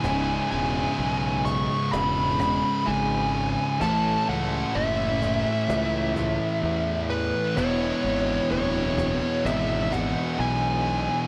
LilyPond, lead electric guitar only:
\new Staff \with { instrumentName = "Lead electric guitar" } { \time 4/4 \key cis \minor \tempo 4 = 64 gis''8 gis''4 cis'''8 b''8 b''8 gis''4 | a''8 fis''8 e''2~ e''8 b'8 | cis''4 cis''4 e''8 fis''8 gis''4 | }